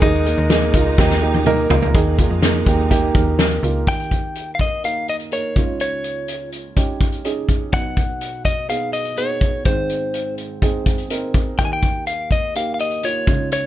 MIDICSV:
0, 0, Header, 1, 6, 480
1, 0, Start_track
1, 0, Tempo, 481928
1, 20, Time_signature, 4, 2, 24, 8
1, 13609, End_track
2, 0, Start_track
2, 0, Title_t, "Clean electric guitar"
2, 0, Program_c, 0, 27
2, 22, Note_on_c, 0, 63, 84
2, 1419, Note_off_c, 0, 63, 0
2, 3869, Note_on_c, 0, 79, 78
2, 4484, Note_off_c, 0, 79, 0
2, 4531, Note_on_c, 0, 77, 42
2, 4584, Note_off_c, 0, 77, 0
2, 4591, Note_on_c, 0, 75, 63
2, 4826, Note_off_c, 0, 75, 0
2, 4830, Note_on_c, 0, 77, 68
2, 5071, Note_off_c, 0, 77, 0
2, 5075, Note_on_c, 0, 75, 65
2, 5138, Note_off_c, 0, 75, 0
2, 5309, Note_on_c, 0, 73, 53
2, 5777, Note_off_c, 0, 73, 0
2, 5789, Note_on_c, 0, 73, 58
2, 6465, Note_off_c, 0, 73, 0
2, 7707, Note_on_c, 0, 78, 85
2, 8415, Note_off_c, 0, 78, 0
2, 8419, Note_on_c, 0, 75, 72
2, 8657, Note_off_c, 0, 75, 0
2, 8661, Note_on_c, 0, 77, 72
2, 8891, Note_off_c, 0, 77, 0
2, 8895, Note_on_c, 0, 75, 71
2, 9142, Note_on_c, 0, 73, 64
2, 9146, Note_off_c, 0, 75, 0
2, 9617, Note_off_c, 0, 73, 0
2, 9621, Note_on_c, 0, 72, 60
2, 10302, Note_off_c, 0, 72, 0
2, 11540, Note_on_c, 0, 79, 75
2, 11599, Note_off_c, 0, 79, 0
2, 11603, Note_on_c, 0, 80, 69
2, 11678, Note_off_c, 0, 80, 0
2, 11683, Note_on_c, 0, 79, 76
2, 12019, Note_off_c, 0, 79, 0
2, 12023, Note_on_c, 0, 77, 60
2, 12268, Note_off_c, 0, 77, 0
2, 12272, Note_on_c, 0, 75, 65
2, 12511, Note_off_c, 0, 75, 0
2, 12515, Note_on_c, 0, 77, 72
2, 12680, Note_off_c, 0, 77, 0
2, 12692, Note_on_c, 0, 77, 48
2, 12747, Note_off_c, 0, 77, 0
2, 12755, Note_on_c, 0, 75, 71
2, 12996, Note_off_c, 0, 75, 0
2, 12996, Note_on_c, 0, 73, 59
2, 13436, Note_off_c, 0, 73, 0
2, 13475, Note_on_c, 0, 73, 66
2, 13609, Note_off_c, 0, 73, 0
2, 13609, End_track
3, 0, Start_track
3, 0, Title_t, "Upright piano"
3, 0, Program_c, 1, 0
3, 0, Control_c, 1, 64, 127
3, 20, Note_on_c, 1, 58, 82
3, 23, Note_on_c, 1, 63, 72
3, 25, Note_on_c, 1, 51, 51
3, 26, Note_on_c, 1, 68, 94
3, 33, Control_c, 1, 64, 0
3, 204, Control_c, 1, 64, 127
3, 216, Note_off_c, 1, 58, 0
3, 218, Note_off_c, 1, 63, 0
3, 220, Note_off_c, 1, 68, 0
3, 262, Note_on_c, 1, 58, 70
3, 265, Note_on_c, 1, 63, 60
3, 268, Note_on_c, 1, 70, 76
3, 457, Note_off_c, 1, 58, 0
3, 459, Note_off_c, 1, 63, 0
3, 460, Note_off_c, 1, 70, 0
3, 502, Note_on_c, 1, 58, 93
3, 507, Note_on_c, 1, 63, 85
3, 507, Note_on_c, 1, 68, 96
3, 697, Note_off_c, 1, 58, 0
3, 699, Note_off_c, 1, 63, 0
3, 700, Note_off_c, 1, 68, 0
3, 702, Note_off_c, 1, 51, 0
3, 743, Note_on_c, 1, 58, 82
3, 743, Note_on_c, 1, 63, 78
3, 748, Note_on_c, 1, 65, 90
3, 937, Note_off_c, 1, 58, 0
3, 938, Note_off_c, 1, 63, 0
3, 940, Note_off_c, 1, 65, 0
3, 978, Note_on_c, 1, 58, 88
3, 980, Note_on_c, 1, 63, 77
3, 984, Note_on_c, 1, 67, 92
3, 1175, Note_off_c, 1, 58, 0
3, 1176, Note_off_c, 1, 63, 0
3, 1177, Note_off_c, 1, 67, 0
3, 1216, Note_on_c, 1, 58, 84
3, 1219, Note_on_c, 1, 63, 72
3, 1219, Note_on_c, 1, 67, 88
3, 1413, Note_off_c, 1, 58, 0
3, 1415, Note_off_c, 1, 63, 0
3, 1415, Note_off_c, 1, 67, 0
3, 1455, Note_on_c, 1, 58, 108
3, 1460, Note_on_c, 1, 63, 107
3, 1461, Note_on_c, 1, 70, 123
3, 1653, Note_off_c, 1, 58, 0
3, 1655, Note_off_c, 1, 63, 0
3, 1656, Note_off_c, 1, 70, 0
3, 1699, Note_on_c, 1, 58, 77
3, 1699, Note_on_c, 1, 63, 78
3, 1702, Note_on_c, 1, 65, 85
3, 1895, Note_off_c, 1, 58, 0
3, 1895, Note_off_c, 1, 63, 0
3, 1896, Note_off_c, 1, 65, 0
3, 1936, Note_on_c, 1, 58, 85
3, 1938, Note_on_c, 1, 51, 62
3, 1939, Note_on_c, 1, 63, 83
3, 1941, Note_on_c, 1, 68, 100
3, 1949, Control_c, 1, 64, 0
3, 2105, Control_c, 1, 64, 127
3, 2133, Note_off_c, 1, 58, 0
3, 2135, Note_off_c, 1, 63, 0
3, 2136, Note_off_c, 1, 68, 0
3, 2174, Note_on_c, 1, 58, 74
3, 2174, Note_on_c, 1, 63, 65
3, 2179, Note_on_c, 1, 65, 76
3, 2372, Note_off_c, 1, 58, 0
3, 2372, Note_off_c, 1, 63, 0
3, 2374, Note_off_c, 1, 65, 0
3, 2418, Note_on_c, 1, 58, 79
3, 2420, Note_on_c, 1, 63, 67
3, 2424, Note_on_c, 1, 68, 88
3, 2614, Note_off_c, 1, 58, 0
3, 2615, Note_off_c, 1, 63, 0
3, 2617, Note_off_c, 1, 51, 0
3, 2617, Note_off_c, 1, 68, 0
3, 2657, Note_on_c, 1, 58, 78
3, 2658, Note_on_c, 1, 63, 72
3, 2663, Note_on_c, 1, 67, 87
3, 2854, Note_off_c, 1, 58, 0
3, 2854, Note_off_c, 1, 63, 0
3, 2857, Note_off_c, 1, 67, 0
3, 2892, Note_on_c, 1, 58, 106
3, 2895, Note_on_c, 1, 63, 88
3, 2896, Note_on_c, 1, 67, 109
3, 3091, Note_off_c, 1, 58, 0
3, 3093, Note_off_c, 1, 63, 0
3, 3093, Note_off_c, 1, 67, 0
3, 3134, Note_on_c, 1, 58, 75
3, 3138, Note_on_c, 1, 63, 69
3, 3140, Note_on_c, 1, 70, 82
3, 3332, Note_off_c, 1, 58, 0
3, 3334, Note_off_c, 1, 63, 0
3, 3335, Note_off_c, 1, 70, 0
3, 3376, Note_on_c, 1, 58, 76
3, 3377, Note_on_c, 1, 63, 69
3, 3382, Note_on_c, 1, 70, 82
3, 3573, Note_off_c, 1, 58, 0
3, 3574, Note_off_c, 1, 63, 0
3, 3576, Note_off_c, 1, 70, 0
3, 3610, Note_on_c, 1, 58, 70
3, 3615, Note_on_c, 1, 63, 63
3, 3617, Note_on_c, 1, 65, 82
3, 3811, Note_off_c, 1, 58, 0
3, 3813, Note_off_c, 1, 63, 0
3, 3814, Note_off_c, 1, 65, 0
3, 3856, Note_on_c, 1, 58, 46
3, 3857, Note_on_c, 1, 51, 41
3, 3858, Note_on_c, 1, 63, 41
3, 3860, Note_on_c, 1, 39, 40
3, 3862, Note_on_c, 1, 67, 56
3, 3869, Control_c, 1, 64, 0
3, 4016, Control_c, 1, 64, 127
3, 4644, Note_off_c, 1, 58, 0
3, 4645, Note_off_c, 1, 63, 0
3, 4647, Note_off_c, 1, 67, 0
3, 4819, Note_on_c, 1, 58, 52
3, 4820, Note_on_c, 1, 63, 46
3, 4822, Note_on_c, 1, 70, 62
3, 5212, Note_off_c, 1, 58, 0
3, 5213, Note_off_c, 1, 63, 0
3, 5214, Note_off_c, 1, 70, 0
3, 5297, Note_on_c, 1, 58, 46
3, 5299, Note_on_c, 1, 63, 48
3, 5302, Note_on_c, 1, 70, 53
3, 5499, Note_off_c, 1, 51, 0
3, 5500, Note_off_c, 1, 39, 0
3, 5529, Note_off_c, 1, 63, 0
3, 5538, Note_off_c, 1, 58, 0
3, 5540, Note_off_c, 1, 70, 0
3, 5543, Note_on_c, 1, 37, 43
3, 5543, Note_on_c, 1, 49, 47
3, 5543, Note_on_c, 1, 61, 53
3, 5544, Note_on_c, 1, 63, 53
3, 5546, Note_on_c, 1, 65, 65
3, 5553, Control_c, 1, 64, 0
3, 5722, Control_c, 1, 64, 127
3, 6328, Note_off_c, 1, 61, 0
3, 6329, Note_off_c, 1, 63, 0
3, 6330, Note_off_c, 1, 65, 0
3, 6736, Note_on_c, 1, 61, 63
3, 6737, Note_on_c, 1, 63, 57
3, 6743, Note_on_c, 1, 67, 70
3, 7132, Note_off_c, 1, 61, 0
3, 7132, Note_off_c, 1, 63, 0
3, 7135, Note_off_c, 1, 67, 0
3, 7219, Note_on_c, 1, 61, 60
3, 7221, Note_on_c, 1, 63, 58
3, 7223, Note_on_c, 1, 68, 72
3, 7423, Note_off_c, 1, 37, 0
3, 7423, Note_off_c, 1, 49, 0
3, 7613, Note_off_c, 1, 61, 0
3, 7614, Note_off_c, 1, 63, 0
3, 7615, Note_off_c, 1, 68, 0
3, 7701, Note_on_c, 1, 59, 53
3, 7701, Note_on_c, 1, 63, 49
3, 7702, Note_on_c, 1, 35, 43
3, 7702, Note_on_c, 1, 47, 45
3, 7705, Note_on_c, 1, 66, 54
3, 7714, Control_c, 1, 64, 0
3, 7886, Control_c, 1, 64, 127
3, 8488, Note_off_c, 1, 59, 0
3, 8488, Note_off_c, 1, 63, 0
3, 8490, Note_off_c, 1, 66, 0
3, 8654, Note_on_c, 1, 59, 54
3, 8657, Note_on_c, 1, 63, 51
3, 8661, Note_on_c, 1, 68, 60
3, 9051, Note_off_c, 1, 59, 0
3, 9053, Note_off_c, 1, 63, 0
3, 9055, Note_off_c, 1, 68, 0
3, 9139, Note_on_c, 1, 59, 48
3, 9139, Note_on_c, 1, 63, 49
3, 9142, Note_on_c, 1, 68, 56
3, 9534, Note_off_c, 1, 59, 0
3, 9534, Note_off_c, 1, 63, 0
3, 9536, Note_off_c, 1, 68, 0
3, 9583, Note_off_c, 1, 35, 0
3, 9583, Note_off_c, 1, 47, 0
3, 9620, Note_on_c, 1, 60, 55
3, 9623, Note_on_c, 1, 32, 45
3, 9623, Note_on_c, 1, 63, 46
3, 9623, Note_on_c, 1, 68, 56
3, 9625, Note_on_c, 1, 44, 47
3, 9635, Control_c, 1, 64, 0
3, 9810, Control_c, 1, 64, 127
3, 10408, Note_off_c, 1, 60, 0
3, 10409, Note_off_c, 1, 63, 0
3, 10409, Note_off_c, 1, 68, 0
3, 10575, Note_on_c, 1, 60, 63
3, 10579, Note_on_c, 1, 63, 56
3, 10580, Note_on_c, 1, 68, 73
3, 10972, Note_off_c, 1, 60, 0
3, 10974, Note_off_c, 1, 63, 0
3, 10974, Note_off_c, 1, 68, 0
3, 11059, Note_on_c, 1, 60, 60
3, 11061, Note_on_c, 1, 63, 57
3, 11064, Note_on_c, 1, 70, 61
3, 11454, Note_off_c, 1, 60, 0
3, 11455, Note_off_c, 1, 63, 0
3, 11456, Note_off_c, 1, 70, 0
3, 11503, Note_off_c, 1, 32, 0
3, 11504, Note_off_c, 1, 44, 0
3, 11541, Note_on_c, 1, 58, 48
3, 11542, Note_on_c, 1, 39, 45
3, 11543, Note_on_c, 1, 51, 42
3, 11545, Note_on_c, 1, 63, 43
3, 11546, Note_on_c, 1, 67, 52
3, 11555, Control_c, 1, 64, 0
3, 11721, Control_c, 1, 64, 127
3, 12328, Note_off_c, 1, 58, 0
3, 12330, Note_off_c, 1, 63, 0
3, 12331, Note_off_c, 1, 67, 0
3, 12503, Note_on_c, 1, 58, 52
3, 12506, Note_on_c, 1, 63, 49
3, 12509, Note_on_c, 1, 67, 61
3, 12896, Note_off_c, 1, 58, 0
3, 12898, Note_off_c, 1, 63, 0
3, 12899, Note_off_c, 1, 67, 0
3, 12979, Note_on_c, 1, 58, 48
3, 12985, Note_on_c, 1, 63, 48
3, 12986, Note_on_c, 1, 65, 62
3, 13183, Note_off_c, 1, 39, 0
3, 13183, Note_off_c, 1, 51, 0
3, 13206, Note_off_c, 1, 63, 0
3, 13209, Note_off_c, 1, 65, 0
3, 13219, Note_on_c, 1, 61, 61
3, 13221, Note_off_c, 1, 58, 0
3, 13221, Note_on_c, 1, 63, 53
3, 13222, Note_on_c, 1, 37, 47
3, 13223, Note_on_c, 1, 49, 46
3, 13224, Note_on_c, 1, 65, 61
3, 13234, Control_c, 1, 64, 0
3, 13406, Control_c, 1, 64, 127
3, 13609, Note_off_c, 1, 37, 0
3, 13609, Note_off_c, 1, 49, 0
3, 13609, Note_off_c, 1, 61, 0
3, 13609, Note_off_c, 1, 63, 0
3, 13609, Note_off_c, 1, 65, 0
3, 13609, End_track
4, 0, Start_track
4, 0, Title_t, "String section"
4, 0, Program_c, 2, 48
4, 0, Note_on_c, 2, 56, 83
4, 0, Note_on_c, 2, 58, 75
4, 7, Note_on_c, 2, 63, 91
4, 1900, Note_off_c, 2, 56, 0
4, 1900, Note_off_c, 2, 58, 0
4, 1912, Note_off_c, 2, 63, 0
4, 1929, Note_on_c, 2, 58, 66
4, 1929, Note_on_c, 2, 63, 82
4, 1933, Note_on_c, 2, 56, 74
4, 3834, Note_off_c, 2, 58, 0
4, 3834, Note_off_c, 2, 63, 0
4, 3836, Note_off_c, 2, 56, 0
4, 13609, End_track
5, 0, Start_track
5, 0, Title_t, "FM bass"
5, 0, Program_c, 3, 39
5, 18, Note_on_c, 3, 39, 97
5, 353, Note_off_c, 3, 39, 0
5, 377, Note_on_c, 3, 39, 89
5, 712, Note_off_c, 3, 39, 0
5, 734, Note_on_c, 3, 37, 77
5, 959, Note_off_c, 3, 37, 0
5, 978, Note_on_c, 3, 39, 95
5, 1661, Note_off_c, 3, 39, 0
5, 1693, Note_on_c, 3, 37, 99
5, 1918, Note_off_c, 3, 37, 0
5, 1937, Note_on_c, 3, 39, 106
5, 2272, Note_off_c, 3, 39, 0
5, 2296, Note_on_c, 3, 41, 78
5, 2631, Note_off_c, 3, 41, 0
5, 2654, Note_on_c, 3, 39, 84
5, 3102, Note_off_c, 3, 39, 0
5, 3136, Note_on_c, 3, 39, 88
5, 3583, Note_off_c, 3, 39, 0
5, 3615, Note_on_c, 3, 37, 93
5, 3839, Note_off_c, 3, 37, 0
5, 13609, End_track
6, 0, Start_track
6, 0, Title_t, "Drums"
6, 19, Note_on_c, 9, 36, 104
6, 19, Note_on_c, 9, 42, 81
6, 24, Note_on_c, 9, 82, 68
6, 119, Note_off_c, 9, 36, 0
6, 119, Note_off_c, 9, 42, 0
6, 124, Note_off_c, 9, 82, 0
6, 143, Note_on_c, 9, 82, 50
6, 242, Note_off_c, 9, 82, 0
6, 259, Note_on_c, 9, 42, 72
6, 359, Note_off_c, 9, 42, 0
6, 381, Note_on_c, 9, 82, 44
6, 480, Note_off_c, 9, 82, 0
6, 497, Note_on_c, 9, 38, 97
6, 498, Note_on_c, 9, 42, 85
6, 508, Note_on_c, 9, 82, 70
6, 597, Note_off_c, 9, 38, 0
6, 597, Note_off_c, 9, 42, 0
6, 607, Note_off_c, 9, 82, 0
6, 621, Note_on_c, 9, 82, 47
6, 721, Note_off_c, 9, 82, 0
6, 735, Note_on_c, 9, 36, 76
6, 736, Note_on_c, 9, 42, 70
6, 835, Note_off_c, 9, 36, 0
6, 836, Note_off_c, 9, 42, 0
6, 860, Note_on_c, 9, 82, 51
6, 960, Note_off_c, 9, 82, 0
6, 979, Note_on_c, 9, 36, 92
6, 979, Note_on_c, 9, 38, 55
6, 980, Note_on_c, 9, 82, 70
6, 1078, Note_off_c, 9, 36, 0
6, 1078, Note_off_c, 9, 38, 0
6, 1079, Note_off_c, 9, 82, 0
6, 1098, Note_on_c, 9, 82, 48
6, 1099, Note_on_c, 9, 38, 48
6, 1197, Note_off_c, 9, 82, 0
6, 1199, Note_off_c, 9, 38, 0
6, 1221, Note_on_c, 9, 82, 45
6, 1320, Note_off_c, 9, 82, 0
6, 1338, Note_on_c, 9, 48, 67
6, 1343, Note_on_c, 9, 82, 52
6, 1437, Note_off_c, 9, 48, 0
6, 1443, Note_off_c, 9, 82, 0
6, 1456, Note_on_c, 9, 47, 79
6, 1463, Note_on_c, 9, 82, 65
6, 1556, Note_off_c, 9, 47, 0
6, 1562, Note_off_c, 9, 82, 0
6, 1578, Note_on_c, 9, 82, 52
6, 1677, Note_off_c, 9, 82, 0
6, 1696, Note_on_c, 9, 43, 96
6, 1704, Note_on_c, 9, 82, 46
6, 1796, Note_off_c, 9, 43, 0
6, 1803, Note_off_c, 9, 82, 0
6, 1816, Note_on_c, 9, 43, 84
6, 1817, Note_on_c, 9, 82, 46
6, 1916, Note_off_c, 9, 43, 0
6, 1917, Note_off_c, 9, 82, 0
6, 1936, Note_on_c, 9, 42, 74
6, 1938, Note_on_c, 9, 36, 97
6, 2035, Note_off_c, 9, 42, 0
6, 2037, Note_off_c, 9, 36, 0
6, 2175, Note_on_c, 9, 42, 71
6, 2177, Note_on_c, 9, 36, 82
6, 2275, Note_off_c, 9, 42, 0
6, 2277, Note_off_c, 9, 36, 0
6, 2415, Note_on_c, 9, 38, 88
6, 2416, Note_on_c, 9, 42, 78
6, 2515, Note_off_c, 9, 38, 0
6, 2515, Note_off_c, 9, 42, 0
6, 2654, Note_on_c, 9, 36, 74
6, 2655, Note_on_c, 9, 42, 59
6, 2753, Note_off_c, 9, 36, 0
6, 2755, Note_off_c, 9, 42, 0
6, 2898, Note_on_c, 9, 36, 83
6, 2900, Note_on_c, 9, 42, 75
6, 2998, Note_off_c, 9, 36, 0
6, 3000, Note_off_c, 9, 42, 0
6, 3136, Note_on_c, 9, 36, 91
6, 3139, Note_on_c, 9, 42, 56
6, 3236, Note_off_c, 9, 36, 0
6, 3239, Note_off_c, 9, 42, 0
6, 3374, Note_on_c, 9, 38, 98
6, 3377, Note_on_c, 9, 42, 77
6, 3474, Note_off_c, 9, 38, 0
6, 3476, Note_off_c, 9, 42, 0
6, 3499, Note_on_c, 9, 42, 42
6, 3599, Note_off_c, 9, 42, 0
6, 3622, Note_on_c, 9, 42, 54
6, 3722, Note_off_c, 9, 42, 0
6, 3854, Note_on_c, 9, 42, 61
6, 3857, Note_on_c, 9, 36, 81
6, 3954, Note_off_c, 9, 42, 0
6, 3956, Note_off_c, 9, 36, 0
6, 3981, Note_on_c, 9, 42, 32
6, 4080, Note_off_c, 9, 42, 0
6, 4096, Note_on_c, 9, 42, 55
6, 4097, Note_on_c, 9, 36, 69
6, 4196, Note_off_c, 9, 36, 0
6, 4196, Note_off_c, 9, 42, 0
6, 4337, Note_on_c, 9, 42, 58
6, 4437, Note_off_c, 9, 42, 0
6, 4575, Note_on_c, 9, 36, 58
6, 4579, Note_on_c, 9, 42, 50
6, 4675, Note_off_c, 9, 36, 0
6, 4678, Note_off_c, 9, 42, 0
6, 4820, Note_on_c, 9, 42, 59
6, 4920, Note_off_c, 9, 42, 0
6, 5059, Note_on_c, 9, 42, 49
6, 5159, Note_off_c, 9, 42, 0
6, 5174, Note_on_c, 9, 42, 35
6, 5274, Note_off_c, 9, 42, 0
6, 5296, Note_on_c, 9, 42, 65
6, 5396, Note_off_c, 9, 42, 0
6, 5538, Note_on_c, 9, 36, 69
6, 5540, Note_on_c, 9, 42, 50
6, 5638, Note_off_c, 9, 36, 0
6, 5640, Note_off_c, 9, 42, 0
6, 5775, Note_on_c, 9, 42, 66
6, 5875, Note_off_c, 9, 42, 0
6, 6016, Note_on_c, 9, 42, 54
6, 6116, Note_off_c, 9, 42, 0
6, 6256, Note_on_c, 9, 42, 62
6, 6355, Note_off_c, 9, 42, 0
6, 6497, Note_on_c, 9, 42, 51
6, 6596, Note_off_c, 9, 42, 0
6, 6739, Note_on_c, 9, 36, 69
6, 6739, Note_on_c, 9, 42, 65
6, 6839, Note_off_c, 9, 36, 0
6, 6839, Note_off_c, 9, 42, 0
6, 6978, Note_on_c, 9, 36, 75
6, 6978, Note_on_c, 9, 42, 51
6, 7077, Note_off_c, 9, 36, 0
6, 7077, Note_off_c, 9, 42, 0
6, 7093, Note_on_c, 9, 42, 36
6, 7192, Note_off_c, 9, 42, 0
6, 7217, Note_on_c, 9, 42, 69
6, 7317, Note_off_c, 9, 42, 0
6, 7456, Note_on_c, 9, 36, 67
6, 7459, Note_on_c, 9, 42, 53
6, 7556, Note_off_c, 9, 36, 0
6, 7559, Note_off_c, 9, 42, 0
6, 7695, Note_on_c, 9, 42, 62
6, 7698, Note_on_c, 9, 36, 85
6, 7795, Note_off_c, 9, 42, 0
6, 7798, Note_off_c, 9, 36, 0
6, 7934, Note_on_c, 9, 42, 58
6, 7938, Note_on_c, 9, 36, 79
6, 8033, Note_off_c, 9, 42, 0
6, 8037, Note_off_c, 9, 36, 0
6, 8177, Note_on_c, 9, 42, 60
6, 8277, Note_off_c, 9, 42, 0
6, 8416, Note_on_c, 9, 36, 59
6, 8418, Note_on_c, 9, 42, 52
6, 8515, Note_off_c, 9, 36, 0
6, 8518, Note_off_c, 9, 42, 0
6, 8658, Note_on_c, 9, 42, 68
6, 8757, Note_off_c, 9, 42, 0
6, 8895, Note_on_c, 9, 42, 53
6, 8994, Note_off_c, 9, 42, 0
6, 9011, Note_on_c, 9, 42, 36
6, 9111, Note_off_c, 9, 42, 0
6, 9135, Note_on_c, 9, 42, 72
6, 9234, Note_off_c, 9, 42, 0
6, 9374, Note_on_c, 9, 36, 70
6, 9375, Note_on_c, 9, 42, 50
6, 9474, Note_off_c, 9, 36, 0
6, 9475, Note_off_c, 9, 42, 0
6, 9610, Note_on_c, 9, 42, 60
6, 9616, Note_on_c, 9, 36, 78
6, 9710, Note_off_c, 9, 42, 0
6, 9716, Note_off_c, 9, 36, 0
6, 9855, Note_on_c, 9, 42, 54
6, 9955, Note_off_c, 9, 42, 0
6, 10097, Note_on_c, 9, 42, 65
6, 10197, Note_off_c, 9, 42, 0
6, 10335, Note_on_c, 9, 42, 56
6, 10435, Note_off_c, 9, 42, 0
6, 10579, Note_on_c, 9, 36, 71
6, 10579, Note_on_c, 9, 42, 64
6, 10678, Note_off_c, 9, 36, 0
6, 10679, Note_off_c, 9, 42, 0
6, 10818, Note_on_c, 9, 36, 74
6, 10820, Note_on_c, 9, 42, 54
6, 10917, Note_off_c, 9, 36, 0
6, 10919, Note_off_c, 9, 42, 0
6, 10934, Note_on_c, 9, 42, 36
6, 11034, Note_off_c, 9, 42, 0
6, 11057, Note_on_c, 9, 42, 67
6, 11157, Note_off_c, 9, 42, 0
6, 11298, Note_on_c, 9, 36, 75
6, 11302, Note_on_c, 9, 42, 47
6, 11397, Note_off_c, 9, 36, 0
6, 11401, Note_off_c, 9, 42, 0
6, 11538, Note_on_c, 9, 42, 64
6, 11540, Note_on_c, 9, 36, 80
6, 11637, Note_off_c, 9, 42, 0
6, 11640, Note_off_c, 9, 36, 0
6, 11776, Note_on_c, 9, 42, 53
6, 11779, Note_on_c, 9, 36, 73
6, 11876, Note_off_c, 9, 42, 0
6, 11879, Note_off_c, 9, 36, 0
6, 12018, Note_on_c, 9, 42, 61
6, 12117, Note_off_c, 9, 42, 0
6, 12257, Note_on_c, 9, 36, 68
6, 12259, Note_on_c, 9, 42, 48
6, 12357, Note_off_c, 9, 36, 0
6, 12359, Note_off_c, 9, 42, 0
6, 12503, Note_on_c, 9, 42, 69
6, 12602, Note_off_c, 9, 42, 0
6, 12741, Note_on_c, 9, 42, 53
6, 12840, Note_off_c, 9, 42, 0
6, 12854, Note_on_c, 9, 42, 35
6, 12953, Note_off_c, 9, 42, 0
6, 12979, Note_on_c, 9, 42, 70
6, 13079, Note_off_c, 9, 42, 0
6, 13220, Note_on_c, 9, 36, 77
6, 13224, Note_on_c, 9, 42, 50
6, 13320, Note_off_c, 9, 36, 0
6, 13324, Note_off_c, 9, 42, 0
6, 13462, Note_on_c, 9, 42, 70
6, 13562, Note_off_c, 9, 42, 0
6, 13609, End_track
0, 0, End_of_file